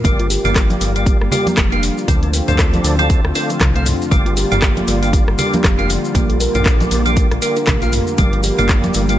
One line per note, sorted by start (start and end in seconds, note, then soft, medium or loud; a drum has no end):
0.04 0.38 G1 loud
0.04 9.19 D3 medium
0.04 0.19 G3 loud
0.04 2.06 G3 medium
0.04 0.28 A#3 medium
0.04 2.06 A#3 medium
0.04 0.28 F4 medium
0.04 9.19 F4 medium
0.04 0.28 G4 medium
0.04 0.28 D5 medium
0.04 kick loud
0.04 closed hi-hat medium
0.04 high conga medium
0.04 low conga loud
0.04 maracas medium
0.19 0.29 F4 medium
0.19 closed hi-hat soft
0.30 0.43 G4 medium
0.30 open hi-hat loud
0.30 maracas loud
0.44 0.76 G1 loud
0.44 0.51 A#3 medium
0.44 0.92 A#3 medium
0.44 0.92 F4 medium
0.44 0.92 G4 medium
0.44 0.92 D5 medium
0.44 closed hi-hat soft
0.44 mid tom medium
0.44 high conga medium
0.44 maracas soft
0.56 kick loud
0.56 cross-stick loud
0.56 clap loud
0.56 closed hi-hat medium
0.56 maracas medium
0.70 closed hi-hat soft
0.70 high conga loud
0.70 maracas soft
0.81 1.14 G1 loud
0.81 0.95 G3 medium
0.81 open hi-hat medium
0.81 maracas loud
0.96 1.18 A#3 medium
0.96 1.18 F4 medium
0.96 1.18 G4 medium
0.96 1.18 D5 loud
0.96 closed hi-hat soft
0.96 maracas soft
1.06 kick loud
1.06 closed hi-hat medium
1.06 maracas soft
1.21 1.29 G1 medium
1.21 cross-stick medium
1.31 1.48 A#3 medium
1.31 1.48 F4 medium
1.31 1.48 G4 medium
1.31 1.45 G4 medium
1.31 1.48 D5 medium
1.31 open hi-hat medium
1.31 low conga medium
1.31 maracas medium
1.47 1.52 A#3 medium
1.47 closed hi-hat soft
1.47 high conga loud
1.47 maracas soft
1.57 1.90 F1 loud
1.57 1.71 F3 medium
1.57 kick loud
1.57 cross-stick loud
1.57 clap loud
1.57 closed hi-hat medium
1.57 maracas soft
1.72 1.84 A#3 medium
1.72 1.82 D4 medium
1.72 1.84 F4 medium
1.72 1.84 G4 medium
1.72 1.84 F5 medium
1.72 closed hi-hat soft
1.83 open hi-hat loud
1.83 maracas loud
1.98 maracas soft
2.08 2.41 D2 loud
2.08 2.22 D3 loud
2.08 4.10 A3 medium
2.08 4.09 C4 medium
2.08 2.31 C4 medium
2.08 2.31 F4 medium
2.08 2.31 A4 medium
2.08 2.31 D5 medium
2.08 kick loud
2.08 closed hi-hat medium
2.08 high conga medium
2.08 low conga loud
2.08 maracas medium
2.23 2.32 C4 medium
2.23 closed hi-hat soft
2.33 2.47 D4 medium
2.33 open hi-hat loud
2.33 maracas medium
2.48 2.79 D2 loud
2.48 2.54 F3 medium
2.48 2.96 C4 medium
2.48 2.96 F4 medium
2.48 2.96 A4 medium
2.48 2.96 D5 medium
2.48 closed hi-hat soft
2.48 mid tom medium
2.48 maracas soft
2.59 kick loud
2.59 cross-stick loud
2.59 clap medium
2.59 closed hi-hat medium
2.59 maracas medium
2.74 closed hi-hat soft
2.74 high conga loud
2.74 maracas soft
2.84 3.17 D2 loud
2.84 2.98 D3 medium
2.84 open hi-hat medium
2.84 maracas loud
2.99 3.21 C4 medium
2.99 3.21 F4 medium
2.99 3.21 A4 medium
2.99 3.21 D5 loud
2.99 closed hi-hat soft
2.99 high conga medium
2.99 maracas soft
3.10 kick loud
3.10 closed hi-hat medium
3.10 maracas medium
3.25 3.32 D2 medium
3.25 cross-stick medium
3.35 3.51 C4 medium
3.35 3.48 D4 medium
3.35 3.51 F4 medium
3.35 3.51 A4 medium
3.35 3.51 D5 medium
3.35 open hi-hat medium
3.35 maracas medium
3.50 3.56 F3 medium
3.50 closed hi-hat soft
3.50 maracas soft
3.60 3.94 C2 loud
3.60 3.74 C3 medium
3.60 kick loud
3.60 cross-stick loud
3.60 clap loud
3.60 closed hi-hat medium
3.60 low conga loud
3.60 maracas medium
3.75 3.85 A3 medium
3.75 3.88 C4 medium
3.75 3.88 F4 medium
3.75 3.88 A4 medium
3.75 3.88 F5 medium
3.75 closed hi-hat soft
3.86 mid tom medium
3.86 open hi-hat medium
3.86 maracas loud
4.02 maracas soft
4.11 4.44 G1 loud
4.11 4.25 G3 loud
4.11 8.14 G3 medium
4.11 4.34 A#3 medium
4.11 6.13 A#3 medium
4.11 4.34 F4 medium
4.11 4.34 G4 medium
4.11 4.34 D5 medium
4.11 kick loud
4.11 closed hi-hat medium
4.11 high conga medium
4.11 low conga loud
4.11 maracas medium
4.26 4.36 F4 medium
4.26 closed hi-hat soft
4.37 4.50 G4 medium
4.37 open hi-hat loud
4.37 maracas loud
4.51 4.83 G1 loud
4.51 4.57 A#3 medium
4.51 4.99 A#3 medium
4.51 4.99 F4 medium
4.51 4.99 G4 medium
4.51 4.99 D5 medium
4.51 closed hi-hat soft
4.51 mid tom medium
4.51 high conga medium
4.51 maracas soft
4.62 kick loud
4.62 cross-stick loud
4.62 clap loud
4.62 closed hi-hat medium
4.62 maracas medium
4.77 closed hi-hat soft
4.77 high conga loud
4.77 maracas soft
4.88 5.21 G1 medium
4.88 5.02 G3 medium
4.88 open hi-hat medium
4.88 maracas loud
5.02 5.24 A#3 medium
5.02 5.24 F4 medium
5.02 5.24 G4 medium
5.02 5.24 D5 loud
5.02 closed hi-hat soft
5.02 maracas soft
5.13 kick loud
5.13 closed hi-hat medium
5.13 maracas medium
5.28 5.35 G1 medium
5.28 cross-stick medium
5.38 5.54 A#3 medium
5.38 5.54 F4 medium
5.38 5.52 G4 medium
5.38 5.54 G4 medium
5.38 5.54 D5 medium
5.38 open hi-hat medium
5.38 low conga medium
5.38 maracas loud
5.53 5.59 A#3 medium
5.53 closed hi-hat soft
5.53 high conga loud
5.53 maracas soft
5.64 5.97 F1 loud
5.64 5.78 F3 medium
5.64 kick loud
5.64 cross-stick loud
5.64 clap loud
5.64 closed hi-hat medium
5.64 maracas medium
5.79 5.91 A#3 medium
5.79 5.89 D4 medium
5.79 5.91 F4 medium
5.79 5.91 G4 medium
5.79 5.91 F5 medium
5.79 closed hi-hat soft
5.90 open hi-hat medium
5.90 maracas loud
6.05 maracas soft
6.15 6.48 A#1 loud
6.15 6.29 A#3 loud
6.15 6.38 A#3 medium
6.15 9.19 A#3 medium
6.15 6.38 F4 medium
6.15 6.38 G4 medium
6.15 6.38 D5 medium
6.15 kick loud
6.15 closed hi-hat medium
6.15 high conga medium
6.15 low conga loud
6.15 maracas medium
6.29 6.39 A4 medium
6.29 closed hi-hat soft
6.40 6.54 A#4 medium
6.40 open hi-hat medium
6.40 maracas medium
6.54 6.86 A#1 loud
6.54 7.02 A#3 medium
6.54 6.61 D4 medium
6.54 7.02 F4 medium
6.54 7.02 G4 medium
6.54 7.02 D5 medium
6.54 closed hi-hat soft
6.54 mid tom medium
6.54 maracas soft
6.66 kick loud
6.66 cross-stick loud
6.66 clap medium
6.66 closed hi-hat medium
6.66 maracas medium
6.80 closed hi-hat soft
6.80 high conga loud
6.80 maracas soft
6.91 7.24 A#1 loud
6.91 7.05 A#3 medium
6.91 open hi-hat medium
6.91 maracas loud
7.06 7.28 A#3 medium
7.06 7.28 F4 medium
7.06 7.28 G4 medium
7.06 7.28 D5 loud
7.06 closed hi-hat soft
7.06 high conga medium
7.06 maracas soft
7.17 kick loud
7.17 closed hi-hat medium
7.17 maracas medium
7.31 7.39 A#1 medium
7.31 cross-stick medium
7.31 closed hi-hat soft
7.42 7.58 A#3 medium
7.42 7.58 F4 medium
7.42 7.58 G4 medium
7.42 7.55 A#4 medium
7.42 7.58 D5 medium
7.42 open hi-hat medium
7.42 maracas loud
7.56 7.63 D4 medium
7.56 closed hi-hat soft
7.56 maracas soft
7.67 8.00 A#1 medium
7.67 kick loud
7.67 cross-stick loud
7.67 clap loud
7.67 closed hi-hat medium
7.67 low conga loud
7.67 maracas medium
7.82 7.94 A#3 medium
7.82 7.92 F4 medium
7.82 7.94 F4 medium
7.82 7.94 G4 medium
7.82 7.95 F5 medium
7.82 closed hi-hat soft
7.82 maracas soft
7.93 mid tom medium
7.93 open hi-hat medium
7.93 maracas medium
8.07 maracas soft
8.18 8.51 G1 loud
8.18 8.32 G3 loud
8.18 9.19 G3 medium
8.18 8.41 A#3 medium
8.18 8.41 F4 medium
8.18 8.41 G4 medium
8.18 8.41 D5 medium
8.18 kick loud
8.18 closed hi-hat medium
8.18 high conga medium
8.18 low conga loud
8.18 maracas medium
8.33 8.39 F3 medium
8.33 closed hi-hat soft
8.43 8.57 G4 medium
8.43 open hi-hat medium
8.43 maracas medium
8.58 8.89 G1 loud
8.58 8.64 A#3 medium
8.58 9.06 A#3 medium
8.58 9.06 F4 medium
8.58 9.06 G4 medium
8.58 9.06 D5 medium
8.58 closed hi-hat soft
8.58 mid tom medium
8.58 high conga medium
8.58 maracas soft
8.69 kick loud
8.69 cross-stick loud
8.69 clap loud
8.69 closed hi-hat medium
8.69 maracas medium
8.84 closed hi-hat soft
8.84 high conga loud
8.84 maracas soft
8.94 9.19 G1 medium
8.94 9.08 G3 medium
8.94 open hi-hat medium
8.94 maracas loud
9.09 9.19 A#3 medium
9.09 9.19 F4 medium
9.09 9.19 G4 medium
9.09 9.19 D5 medium
9.09 closed hi-hat soft
9.09 maracas soft